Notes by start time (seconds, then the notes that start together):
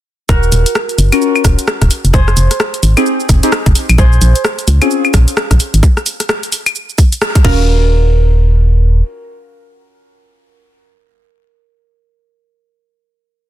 0.29 D#1 F#4 A#4, kick, shaker
0.43 shaker
0.52 D#1, open hi-hat, shaker
0.66 closed hi-hat, shaker
0.75 cross-stick, shaker
0.89 closed hi-hat, shaker
0.98 F#1, open hi-hat, shaker
1.12 C#4 F4 F#4 A#4, closed hi-hat, claves, shaker
1.22 shaker
1.36 claves, shaker
1.44 D#1, kick, cross-stick, open hi-hat, shaker
1.59 closed hi-hat, shaker
1.68 cross-stick, shaker
1.82 D#1, kick, cross-stick, closed hi-hat, shaker
1.91 open hi-hat, shaker
2.04 F1, closed hi-hat, shaker
2.13 F1 G#4 C5, kick, shaker
2.28 cross-stick, shaker
2.37 F1, open hi-hat, shaker
2.51 cross-stick, closed hi-hat, shaker
2.60 cross-stick, shaker
2.74 closed hi-hat, shaker
2.83 G#1, open hi-hat, shaker
2.97 C4 D#4 G4 G#4, closed hi-hat, claves, shaker
3.06 shaker
3.20 shaker
3.29 F1, kick, open hi-hat, shaker
3.43 C4 D#4 G4 G#4, closed hi-hat, shaker
3.52 cross-stick, shaker
3.66 F1, kick, closed hi-hat, shaker
3.75 open hi-hat, shaker
3.89 A#1, closed hi-hat, claves, shaker
3.98 A#1 G#4 C5, kick, shaker
4.12 shaker
4.21 A#1, open hi-hat, shaker
4.36 closed hi-hat, shaker
4.45 cross-stick, shaker
4.59 closed hi-hat, shaker
4.68 C#2, open hi-hat, shaker
4.81 C4 C#4 F4 G#4, closed hi-hat, claves, shaker
4.91 shaker
5.05 claves, shaker
5.14 A#1, kick, cross-stick, open hi-hat, shaker
5.28 closed hi-hat, shaker
5.37 cross-stick, shaker
5.51 A#1, kick, cross-stick, closed hi-hat, shaker
5.60 open hi-hat, shaker
5.74 G#1, closed hi-hat, shaker
5.83 kick, shaker
5.97 cross-stick, shaker
6.06 open hi-hat, shaker
6.20 cross-stick, closed hi-hat, shaker
6.29 cross-stick, shaker
6.43 closed hi-hat, shaker
6.52 open hi-hat, shaker
6.66 closed hi-hat, claves, shaker
6.75 shaker
6.89 shaker
6.98 kick, open hi-hat, shaker
7.12 closed hi-hat, shaker
7.22 cross-stick, shaker
7.35 kick, closed hi-hat, shaker
7.44 D#1 C#4 F4 F#4 A#4, kick, crash